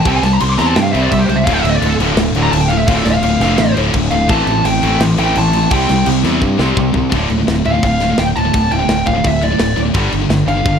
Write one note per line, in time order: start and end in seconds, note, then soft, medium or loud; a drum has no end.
0.00 0.07 A5 loud
0.05 0.21 C2 medium
0.05 0.22 C3 medium
0.05 0.22 G3 loud
0.05 0.23 C4 loud
0.05 0.15 G5 loud
0.05 kick loud
0.05 crash medium
0.15 0.23 G#5 medium
0.23 0.38 C2 loud
0.23 0.39 C3 medium
0.23 0.39 G3 loud
0.23 0.33 A5 loud
0.23 snare soft
0.23 crash medium
0.33 0.41 A#5 loud
0.40 0.57 C2 medium
0.40 0.57 C3 medium
0.40 0.57 G3 medium
0.40 0.47 C6 loud
0.40 crash medium
0.49 0.58 C6 loud
0.49 0.54 D6 loud
0.58 0.75 E2 medium
0.58 0.75 C3 loud
0.58 0.75 G3 medium
0.58 0.75 C4 loud
0.58 0.66 A#5 loud
0.58 snare soft
0.58 crash medium
0.67 0.76 A5 medium
0.76 0.92 G2 loud
0.76 0.92 C3 loud
0.76 0.92 G3 loud
0.76 0.83 G5 loud
0.76 snare loud
0.76 crash medium
0.84 0.92 F5 loud
0.92 1.10 C2 loud
0.92 1.10 C3 loud
0.92 1.11 G3 loud
0.92 1.11 C4 loud
0.92 1.02 E5 loud
0.92 crash medium
1.01 1.11 D5 loud
1.10 1.27 C2 loud
1.10 1.27 C3 medium
1.10 1.28 G3 medium
1.10 1.19 E5 medium
1.10 kick medium
1.10 crash medium
1.18 1.28 G4 medium
1.26 1.44 C#2 medium
1.26 1.45 C3 medium
1.26 1.45 G3 medium
1.26 1.36 C5 medium
1.26 crash medium
1.36 1.44 E5 medium
1.44 1.63 D1 medium
1.44 1.63 D2 loud
1.44 1.63 A2 loud
1.44 1.64 D3 medium
1.44 1.53 F5 loud
1.44 kick loud
1.44 crash loud
1.49 2.89 A3 medium
1.49 2.89 F4 loud
1.49 1.62 G5 loud
1.62 1.80 D1 loud
1.62 1.80 D2 loud
1.62 1.81 A2 loud
1.62 1.72 E5 loud
1.62 crash medium
1.69 1.75 D#5 loud
1.76 1.88 D5 medium
1.82 1.97 D1 medium
1.82 1.98 D2 medium
1.82 1.98 A2 medium
1.82 1.93 A4 loud
1.82 crash medium
2.00 2.16 D1 loud
2.00 2.16 D2 medium
2.00 2.17 A2 medium
2.00 2.17 D3 loud
2.00 crash medium
2.16 2.32 D1 loud
2.16 2.33 D2 medium
2.16 2.34 A2 loud
2.16 snare loud
2.16 crash loud
2.34 2.50 D1 loud
2.34 2.52 D2 medium
2.34 2.52 A2 medium
2.34 2.53 D3 loud
2.34 crash medium
2.43 2.51 A#5 loud
2.52 2.84 D1 medium
2.52 2.69 D2 medium
2.52 2.69 A2 medium
2.52 2.61 A5 medium
2.52 crash loud
2.61 2.70 G5 loud
2.68 2.87 D2 medium
2.68 2.87 A2 medium
2.68 2.78 F5 loud
2.68 crash medium
2.78 2.87 E5 loud
2.87 3.03 D1 loud
2.87 3.05 D2 loud
2.87 3.05 A2 loud
2.87 3.05 D3 loud
2.87 4.29 A3 loud
2.87 4.29 F4 loud
2.87 2.96 F5 loud
2.87 kick loud
2.87 crash medium
2.95 3.04 A4 medium
3.05 3.21 D1 loud
3.05 3.22 D2 loud
3.05 3.22 A2 loud
3.05 3.13 D5 loud
3.05 snare soft
3.05 crash medium
3.13 3.23 F5 medium
3.23 3.38 D1 medium
3.23 3.40 D2 medium
3.23 3.40 A2 medium
3.23 3.73 F5 medium
3.23 crash medium
3.40 3.56 F1 medium
3.40 3.58 D2 medium
3.40 3.58 A2 medium
3.40 3.58 D3 loud
3.40 snare soft
3.40 crash medium
3.58 3.74 A1 loud
3.58 3.75 D2 medium
3.58 3.75 A2 medium
3.58 snare loud
3.58 crash medium
3.76 3.92 D1 loud
3.76 3.93 D2 loud
3.76 3.93 A2 loud
3.76 3.94 D3 loud
3.76 crash medium
3.94 4.10 D1 medium
3.94 4.10 D2 medium
3.94 4.10 A2 medium
3.94 kick loud
3.94 crash medium
4.11 4.28 D1 medium
4.11 4.28 D2 medium
4.11 4.28 A2 medium
4.11 4.29 F5 loud
4.11 crash medium
4.29 4.45 A1 loud
4.29 4.46 A2 medium
4.29 4.46 E3 loud
4.29 4.46 A3 loud
4.29 5.71 C4 loud
4.29 5.71 E4 loud
4.29 4.63 A5 loud
4.29 kick loud
4.29 crash medium
4.33 5.72 A4 loud
4.47 4.62 A1 loud
4.47 4.63 A2 medium
4.47 4.63 E3 loud
4.47 crash medium
4.64 4.80 A1 medium
4.64 4.80 A2 medium
4.64 4.81 E3 loud
4.64 4.98 G5 medium
4.64 crash medium
4.82 4.98 A1 loud
4.82 4.99 A2 medium
4.82 4.99 E3 loud
4.82 4.99 A3 loud
4.82 crash medium
5.00 5.16 A1 loud
5.00 5.16 A2 medium
5.00 5.17 E3 loud
5.00 snare loud
5.00 crash loud
5.17 5.34 A1 loud
5.17 5.34 A2 loud
5.17 5.34 E3 loud
5.17 5.35 A3 loud
5.17 5.36 G5 loud
5.17 crash medium
5.35 5.67 A1 loud
5.35 5.51 A2 medium
5.35 5.52 E3 medium
5.35 5.70 A5 loud
5.35 crash medium
5.53 5.69 A2 medium
5.53 5.69 E3 medium
5.53 crash medium
5.71 5.86 C2 loud
5.71 5.87 C3 loud
5.71 5.88 G3 loud
5.71 5.88 C4 loud
5.71 7.12 E4 loud
5.71 7.12 G4 loud
5.71 7.13 C5 loud
5.71 6.04 G5 loud
5.71 kick loud
5.71 crash loud
5.88 6.05 C2 loud
5.88 6.04 C3 loud
5.88 6.05 G3 loud
5.88 snare soft
5.88 crash medium
6.06 6.22 C2 medium
6.06 6.22 C3 medium
6.06 6.22 G3 medium
6.06 crash loud
6.24 6.39 E2 medium
6.24 6.40 C3 medium
6.24 6.40 G3 loud
6.24 6.41 C4 medium
6.24 snare soft
6.24 crash medium
6.41 6.57 G2 loud
6.41 6.57 C3 medium
6.41 6.57 G3 loud
6.41 kick medium
6.58 6.74 C2 loud
6.58 6.74 C3 medium
6.58 6.75 G3 loud
6.58 6.76 C4 loud
6.58 snare medium
6.75 6.92 C2 medium
6.75 6.91 C3 medium
6.75 6.92 G3 medium
6.75 kick loud
6.79 6.94 C3 medium
6.79 6.94 G3 loud
6.93 7.10 C2 medium
6.93 7.09 C3 medium
6.93 7.09 G3 medium
6.93 floor tom loud
6.97 7.12 C3 medium
6.97 7.12 G3 medium
7.09 7.27 D1 medium
7.09 7.27 D2 medium
7.09 7.27 A2 medium
7.09 7.28 D3 loud
7.09 kick loud
7.09 crash medium
7.15 7.30 D3 medium
7.28 7.44 D1 medium
7.28 7.37 D2 medium
7.28 7.36 A2 medium
7.28 crash medium
7.38 7.46 D2 medium
7.38 7.46 A2 medium
7.47 7.62 D1 medium
7.47 7.63 D2 medium
7.47 7.63 A2 medium
7.47 snare loud
7.47 crash medium
7.51 7.65 A2 medium
7.65 7.80 D1 medium
7.65 7.73 D2 medium
7.65 7.73 A2 medium
7.65 8.20 F5 medium
7.65 crash medium
7.74 7.82 D2 medium
7.74 7.82 A2 medium
7.83 8.12 D1 medium
7.83 7.99 D2 medium
7.83 7.99 A2 medium
7.83 kick loud
7.83 crash medium
8.00 8.09 D2 medium
8.00 8.09 A2 medium
8.00 snare soft
8.00 crash medium
8.10 8.17 D2 medium
8.10 8.18 A2 medium
8.18 8.33 D1 medium
8.18 8.34 D2 medium
8.18 8.35 A2 medium
8.18 8.24 G5 loud
8.18 snare loud
8.18 crash medium
8.36 8.51 D1 medium
8.36 8.44 D2 medium
8.36 8.44 A2 medium
8.36 8.72 A5 loud
8.36 crash medium
8.45 8.52 D2 medium
8.45 8.52 A2 medium
8.53 8.68 D1 medium
8.53 8.69 D2 medium
8.53 8.70 A2 loud
8.53 kick loud
8.53 crash medium
8.71 8.86 D1 medium
8.71 8.79 D2 medium
8.71 8.78 A2 medium
8.71 9.05 G5 medium
8.71 crash medium
8.79 8.87 D2 medium
8.79 8.87 A2 medium
8.88 9.03 D1 medium
8.88 9.05 D2 medium
8.88 9.04 A2 medium
8.88 snare loud
8.88 crash medium
9.06 9.21 D1 medium
9.06 9.14 D2 medium
9.06 9.14 A2 medium
9.06 9.25 F5 medium
9.06 kick medium
9.06 crash medium
9.15 9.22 D2 medium
9.15 9.23 A2 medium
9.24 9.53 D1 loud
9.24 9.40 D2 medium
9.24 9.40 A2 medium
9.24 9.43 E5 medium
9.24 kick loud
9.24 crash medium
9.41 9.49 D2 medium
9.41 9.49 A2 medium
9.41 9.78 D5 medium
9.41 crash medium
9.50 9.57 D2 medium
9.50 9.58 A2 medium
9.59 9.74 D1 medium
9.59 9.75 D2 medium
9.59 9.75 A2 medium
9.59 snare loud
9.59 crash medium
9.76 9.92 D1 medium
9.76 9.85 D2 medium
9.76 9.84 A2 medium
9.76 crash medium
9.85 9.94 D2 medium
9.85 9.95 A2 medium
9.94 10.09 G1 medium
9.94 10.12 G2 medium
9.94 10.11 D3 medium
9.94 10.12 G3 loud
9.94 kick loud
9.94 crash medium
10.12 10.27 G1 medium
10.12 10.21 G2 medium
10.12 10.20 D3 medium
10.12 crash medium
10.21 10.28 G2 medium
10.21 10.29 D3 medium
10.30 10.44 G1 medium
10.30 10.46 G2 medium
10.30 10.47 D3 medium
10.30 snare loud
10.30 crash medium
10.47 10.62 G1 medium
10.47 10.56 G2 medium
10.47 10.56 D3 medium
10.47 10.79 F5 medium
10.47 crash medium
10.57 10.64 G2 medium
10.57 10.64 D3 medium
10.65 10.79 G1 loud
10.65 10.79 G2 medium
10.65 10.79 D3 medium
10.65 kick loud
10.65 crash medium